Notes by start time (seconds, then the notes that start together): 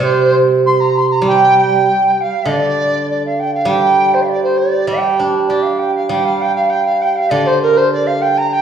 Already playing: G3
0.00 C3 C5
0.65 C6
0.80 A#5
0.97 C6
1.10 A#5
1.22 G3
1.27 G5
1.58 G5
2.10 G5
2.21 F5
2.45 D3
2.50 D5
3.10 D5
3.25 F5
3.39 G5
3.54 F5
3.65 G3 G5
4.14 C5
4.21 F5
4.28 D5
4.43 C5
4.57 D5
4.87 G3 G5
5.19 D4
5.48 G4 D5
5.62 F5
5.78 G5
5.94 F5
6.09 G3 G5
6.25 F5
6.41 G5
6.55 F5
6.69 G5
6.85 F5
7.01 G5
7.12 F5 G5
7.30 D3 D5
7.46 C5
7.62 A#4
7.77 C5
7.92 D5
8.06 F5
8.21 G5
8.37 A#5
8.52 G5